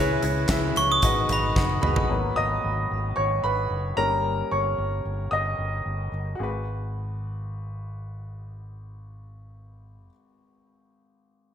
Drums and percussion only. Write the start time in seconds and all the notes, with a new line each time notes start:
0.22 closed hi-hat
0.48 kick, snare, clap, closed hi-hat
0.76 closed hi-hat
1.02 kick, closed hi-hat
1.29 closed hi-hat, floor tom
1.56 kick, snare
1.83 mid tom
1.96 floor tom